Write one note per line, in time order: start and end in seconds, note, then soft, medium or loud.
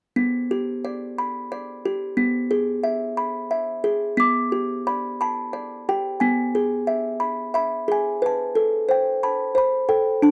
0.16 1.51 B3 medium
0.51 1.84 G4 medium
0.85 1.51 D5 medium
1.18 2.18 B5 medium
1.52 2.17 D5 medium
1.85 2.18 G4 medium
2.17 3.51 B3 medium
2.51 3.83 G#4 medium
2.83 3.50 E5 medium
3.17 4.19 B5 medium
3.51 4.19 E5 medium
3.84 4.18 G#4 medium
4.17 5.54 B3 medium
4.17 4.83 D6 medium
4.52 5.88 G4 medium
4.87 5.52 D5 medium
4.87 5.20 B5 medium
5.21 5.85 A5 medium
5.21 6.22 B5 medium
5.53 6.21 D5 medium
5.89 6.22 G4 medium
5.89 6.23 G5 medium
6.20 7.56 B3 medium
6.20 7.25 G#5 medium
6.55 7.87 G#4 medium
6.87 7.53 E5 medium
7.20 7.54 B5 medium
7.54 8.22 E5 medium
7.54 7.90 B5 medium
7.88 8.22 G#4 medium
7.88 8.06 G#5 medium
8.22 9.57 B4 medium
8.26 8.94 A5 medium
8.55 9.87 A4 medium
8.89 9.54 C5 medium
8.89 9.25 G5 medium
9.23 9.58 A5 medium
9.23 9.57 B5 medium
9.55 10.22 C5 medium
9.55 9.89 B5 medium
9.89 10.23 A4 medium
9.89 10.24 G5 medium
10.22 10.31 D4 medium
10.22 10.31 A5 medium